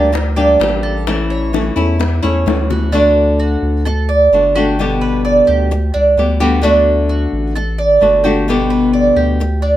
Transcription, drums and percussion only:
0.15 high bongo medium
0.61 high bongo medium
0.61 low bongo medium
1.07 high bongo medium
1.54 high bongo medium
1.78 high bongo soft
2.01 high bongo medium
2.24 high bongo soft
2.48 high bongo medium
2.71 low bongo medium

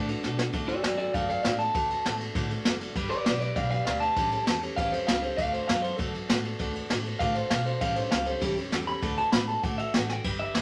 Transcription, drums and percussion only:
0.08 ride medium
0.24 snare medium
0.39 snare loud
0.54 kick loud
0.54 ride medium
0.68 ride medium
0.84 snare loud
0.84 ride medium
0.99 ride medium
1.14 kick loud
1.14 ride medium
1.30 ride medium
1.45 snare loud
1.45 ride medium
1.60 ride medium
1.75 kick loud
1.75 ride medium
1.90 ride medium
2.06 snare loud
2.06 ride medium
2.20 ride medium
2.35 kick loud
2.35 ride medium
2.50 ride medium
2.65 snare loud
2.65 ride medium
2.81 ride medium
2.96 kick loud
2.96 ride medium
3.11 ride medium
3.26 snare loud
3.26 ride medium
3.41 ride medium
3.56 kick loud
3.56 ride medium
3.71 ride medium
3.87 snare loud
3.87 ride medium
4.02 ride medium
4.16 kick loud
4.16 ride medium
4.32 ride medium
4.47 snare loud
4.47 ride medium
4.63 ride medium
4.78 kick loud
4.78 ride medium
4.93 ride medium
5.08 snare loud
5.08 ride medium
5.23 ride medium
5.38 kick loud
5.38 ride medium
5.54 ride medium
5.69 snare loud
5.69 ride medium
5.84 ride medium
5.99 kick loud
5.99 ride medium
6.15 ride medium
6.29 snare loud
6.29 ride medium
6.45 ride medium
6.60 kick loud
6.60 ride medium
6.76 ride medium
6.90 snare loud
6.90 ride medium
7.05 ride medium
7.20 kick loud
7.20 ride medium
7.35 ride medium
7.50 snare loud
7.50 ride medium
7.66 ride medium
7.81 kick loud
7.81 ride medium
7.96 ride medium
8.12 snare loud
8.12 ride medium
8.26 ride medium
8.42 kick loud
8.42 ride medium
8.57 ride medium
8.72 snare loud
8.72 ride medium
8.88 ride medium
9.02 kick loud
9.02 ride medium
9.18 ride medium
9.32 snare loud
9.32 ride medium
9.48 ride medium
9.64 kick loud
9.64 ride medium
9.79 ride medium
9.94 snare loud
9.94 ride medium
10.09 snare medium
10.24 kick loud
10.24 crash loud
10.55 snare loud
10.55 open hi-hat medium

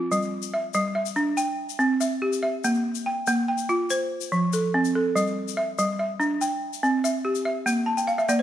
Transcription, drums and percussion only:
0.12 shaker medium
0.22 shaker soft
0.42 shaker medium
0.74 shaker medium
1.06 shaker soft
1.16 shaker soft
1.37 shaker medium
1.69 shaker soft
1.79 shaker soft
2.01 shaker medium
2.33 shaker soft
2.64 shaker medium
2.75 shaker soft
2.95 shaker medium
3.27 shaker medium
3.58 shaker soft
3.69 shaker soft
3.90 shaker medium
4.21 shaker medium
4.32 shaker soft
4.53 shaker medium
4.85 shaker soft
5.17 shaker medium
5.27 shaker soft
5.48 shaker soft
5.79 shaker medium
6.21 shaker soft
6.41 shaker medium
6.73 shaker soft
6.84 shaker soft
7.05 shaker medium
7.35 shaker soft
7.67 shaker medium
7.98 shaker soft
8.08 shaker soft
8.19 shaker soft
8.29 shaker medium

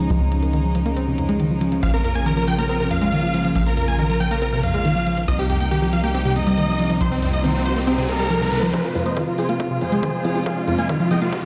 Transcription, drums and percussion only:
0.10 closed hi-hat medium
0.32 closed hi-hat medium
0.43 closed hi-hat medium
0.53 closed hi-hat medium
0.75 closed hi-hat medium
0.86 closed hi-hat medium
0.97 closed hi-hat medium
1.18 closed hi-hat medium
1.29 closed hi-hat medium
1.40 closed hi-hat medium
1.61 closed hi-hat medium
1.72 closed hi-hat medium
1.83 closed hi-hat medium
2.04 closed hi-hat medium
2.15 closed hi-hat medium
2.26 closed hi-hat medium
2.48 closed hi-hat medium
2.58 closed hi-hat medium
2.69 closed hi-hat medium
2.91 closed hi-hat medium
3.02 closed hi-hat medium
3.12 closed hi-hat medium
3.34 closed hi-hat medium
3.45 closed hi-hat medium
3.56 closed hi-hat medium
3.77 closed hi-hat medium
3.88 closed hi-hat medium
3.99 closed hi-hat medium
4.20 closed hi-hat medium
4.31 closed hi-hat medium
4.42 closed hi-hat medium
4.63 closed hi-hat medium
4.74 closed hi-hat medium
4.85 closed hi-hat medium
5.07 closed hi-hat medium
5.17 closed hi-hat medium
5.28 closed hi-hat medium
5.50 closed hi-hat medium
5.61 closed hi-hat medium
5.71 closed hi-hat medium
5.93 closed hi-hat medium
6.04 closed hi-hat medium
6.15 closed hi-hat medium
6.36 closed hi-hat medium
6.47 closed hi-hat medium
6.58 closed hi-hat medium
6.79 closed hi-hat medium
6.90 closed hi-hat medium
7.01 closed hi-hat medium
7.22 closed hi-hat medium
7.33 closed hi-hat medium
7.44 closed hi-hat medium
7.66 closed hi-hat medium
7.76 closed hi-hat medium
7.87 closed hi-hat medium
8.09 closed hi-hat medium
8.20 closed hi-hat medium
8.30 closed hi-hat medium
8.52 closed hi-hat loud
8.63 closed hi-hat medium
8.74 kick loud
8.74 closed hi-hat medium
8.95 open hi-hat loud
9.06 closed hi-hat medium
9.17 kick loud
9.17 closed hi-hat medium
9.38 open hi-hat loud
9.49 closed hi-hat medium
9.60 kick loud
9.60 closed hi-hat medium
9.81 open hi-hat loud
9.92 closed hi-hat medium
10.03 kick loud
10.03 closed hi-hat medium
10.25 open hi-hat loud
10.35 open hi-hat medium
10.46 kick loud
10.46 closed hi-hat medium
10.68 open hi-hat loud
10.79 closed hi-hat medium
10.89 kick loud
10.89 open hi-hat medium
11.11 open hi-hat loud
11.22 closed hi-hat medium
11.33 kick loud
11.33 closed hi-hat medium

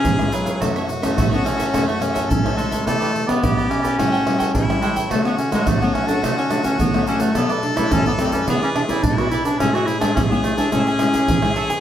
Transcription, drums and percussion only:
0.05 pandeiro medium
0.05 shaker medium
0.05 surdo loud
0.19 pandeiro soft
0.19 tamborim medium
0.19 shaker soft
0.32 pandeiro medium
0.32 shaker medium
0.47 pandeiro medium
0.47 shaker medium
0.47 surdo soft
0.62 pandeiro medium
0.62 tamborim medium
0.62 shaker medium
0.62 surdo medium
0.76 pandeiro soft
0.76 tamborim medium
0.76 shaker soft
0.89 pandeiro medium
0.89 shaker medium
1.03 pandeiro medium
1.03 tamborim medium
1.03 shaker medium
1.03 surdo soft
1.18 pandeiro medium
1.18 tamborim medium
1.18 shaker medium
1.18 surdo loud
1.33 pandeiro soft
1.33 shaker soft
1.46 pandeiro medium
1.46 tamborim medium
1.46 shaker medium
1.60 pandeiro medium
1.60 shaker medium
1.60 surdo soft
1.74 pandeiro medium
1.74 tamborim medium
1.74 shaker medium
1.74 surdo medium
1.89 pandeiro soft
1.89 shaker soft
2.02 pandeiro medium
2.02 tamborim medium
2.02 shaker medium
2.16 pandeiro medium
2.16 shaker medium
2.16 surdo soft
2.31 pandeiro medium
2.31 shaker medium
2.31 surdo loud
2.46 pandeiro soft
2.46 tamborim medium
2.46 shaker soft
2.58 pandeiro medium
2.58 shaker medium
2.72 pandeiro medium
2.72 shaker medium
2.72 surdo soft
2.87 pandeiro medium
2.87 tamborim medium
2.87 shaker medium
2.87 surdo medium
3.02 pandeiro soft
3.02 tamborim medium
3.02 shaker soft
3.16 pandeiro medium
3.29 pandeiro medium
3.29 tamborim medium
3.29 shaker medium
3.29 surdo soft
3.43 pandeiro medium
3.43 tamborim medium
3.43 shaker medium
3.43 surdo medium
3.59 pandeiro soft
3.59 shaker soft
3.71 pandeiro medium
3.71 tamborim medium
3.85 pandeiro medium
3.85 shaker medium
3.85 surdo soft
3.99 pandeiro medium
3.99 tamborim medium
3.99 shaker medium
3.99 surdo medium
4.14 pandeiro soft
4.14 shaker soft
4.27 pandeiro medium
4.27 tamborim medium
4.40 pandeiro medium
4.40 shaker medium
4.40 surdo soft
4.55 pandeiro medium
4.55 shaker medium
4.55 surdo medium
4.70 pandeiro soft
4.70 tamborim medium
4.70 shaker soft
4.82 pandeiro medium
4.82 shaker medium
4.96 pandeiro medium
4.96 shaker medium
4.96 surdo soft
5.11 pandeiro medium
5.11 tamborim medium
5.11 shaker medium
5.11 surdo medium
5.25 pandeiro soft
5.25 tamborim medium
5.25 shaker soft
5.38 pandeiro medium
5.38 shaker medium
5.52 pandeiro medium
5.52 tamborim medium
5.52 shaker medium
5.52 surdo soft
5.67 pandeiro medium
5.67 tamborim medium
5.67 shaker medium
5.67 surdo loud
5.82 pandeiro soft
5.82 shaker soft
5.95 pandeiro medium
5.95 tamborim medium
5.95 surdo soft
6.09 pandeiro medium
6.09 shaker medium
6.09 surdo soft
6.24 pandeiro medium
6.24 tamborim medium
6.24 shaker medium
6.24 surdo medium
6.38 pandeiro soft
6.38 shaker soft
6.51 pandeiro medium
6.51 tamborim medium
6.51 shaker medium
6.64 pandeiro medium
6.64 shaker medium
6.64 surdo soft
6.80 pandeiro medium
6.80 shaker medium
6.80 surdo medium
6.94 pandeiro soft
6.94 tamborim medium
6.94 shaker soft
7.07 pandeiro medium
7.07 shaker medium
7.20 pandeiro medium
7.20 shaker medium
7.20 surdo soft
7.35 pandeiro medium
7.35 tamborim medium
7.35 shaker medium
7.35 surdo medium
7.49 pandeiro soft
7.49 tamborim medium
7.49 shaker soft
7.63 pandeiro medium
7.77 pandeiro medium
7.77 tamborim medium
7.77 shaker medium
7.77 surdo soft
7.92 pandeiro medium
7.92 tamborim medium
7.92 shaker medium
7.92 surdo loud
8.06 pandeiro soft
8.06 shaker soft
8.19 pandeiro medium
8.19 tamborim medium
8.19 shaker medium
8.32 pandeiro medium
8.32 shaker medium
8.32 surdo soft
8.48 pandeiro medium
8.48 tamborim medium
8.48 shaker medium
8.48 surdo medium
8.63 pandeiro soft
8.63 shaker soft
8.76 pandeiro medium
8.76 tamborim medium
8.89 pandeiro medium
8.89 shaker medium
8.89 surdo soft
9.03 pandeiro medium
9.03 shaker medium
9.03 surdo loud
9.18 pandeiro soft
9.18 tamborim medium
9.18 shaker soft
9.31 pandeiro medium
9.31 shaker medium
9.45 pandeiro medium
9.45 shaker medium
9.45 surdo soft
9.60 pandeiro medium
9.60 tamborim medium
9.60 shaker medium
9.60 surdo medium
9.75 pandeiro soft
9.75 tamborim medium
9.75 shaker soft
9.88 pandeiro medium
9.88 shaker medium
10.01 pandeiro medium
10.01 tamborim medium
10.01 shaker medium
10.01 surdo soft
10.17 pandeiro medium
10.17 tamborim medium
10.17 shaker medium
10.17 surdo loud
10.31 pandeiro soft
10.31 shaker soft
10.44 pandeiro medium
10.44 tamborim medium
10.44 shaker medium
10.58 pandeiro medium
10.58 shaker medium
10.58 surdo soft
10.72 pandeiro medium
10.72 tamborim medium
10.72 shaker medium
10.72 surdo medium
10.87 pandeiro soft
10.87 shaker soft
10.99 pandeiro medium
10.99 tamborim medium
10.99 shaker medium
11.14 pandeiro medium
11.14 shaker medium
11.14 surdo soft
11.28 pandeiro medium
11.28 shaker medium
11.28 surdo loud
11.42 pandeiro soft
11.42 tamborim medium
11.42 shaker soft
11.56 pandeiro medium
11.70 pandeiro medium
11.70 shaker medium
11.70 surdo soft

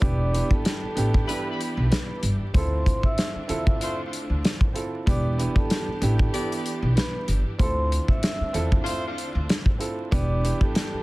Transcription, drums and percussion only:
0.02 kick loud
0.02 closed hi-hat medium
0.35 closed hi-hat medium
0.51 kick loud
0.65 snare loud
0.65 closed hi-hat loud
0.97 closed hi-hat medium
1.14 kick loud
1.29 closed hi-hat loud
1.61 closed hi-hat medium
1.92 snare loud
1.92 closed hi-hat medium
2.23 closed hi-hat medium
2.54 kick loud
2.54 closed hi-hat medium
2.86 kick medium
2.86 closed hi-hat medium
3.03 kick medium
3.18 snare loud
3.18 closed hi-hat loud
3.49 closed hi-hat medium
3.67 kick loud
3.81 closed hi-hat loud
4.13 closed hi-hat medium
4.45 snare loud
4.45 closed hi-hat medium
4.61 kick loud
4.75 closed hi-hat medium
5.07 kick loud
5.07 closed hi-hat medium
5.40 closed hi-hat medium
5.56 kick medium
5.70 snare loud
5.70 closed hi-hat loud
6.02 closed hi-hat medium
6.19 kick loud
6.34 closed hi-hat loud
6.52 closed hi-hat medium
6.66 closed hi-hat medium
6.97 snare loud
6.97 closed hi-hat medium
7.28 closed hi-hat medium
7.60 kick loud
7.60 closed hi-hat medium
7.92 closed hi-hat medium
8.08 kick medium
8.23 snare loud
8.23 closed hi-hat loud
8.54 closed hi-hat medium
8.72 kick loud
8.86 closed hi-hat loud
9.18 closed hi-hat medium
9.50 snare loud
9.50 closed hi-hat medium
9.66 kick medium
9.80 closed hi-hat medium
10.12 kick loud
10.12 closed hi-hat medium
10.45 closed hi-hat medium
10.61 kick medium
10.75 snare loud
10.75 closed hi-hat loud

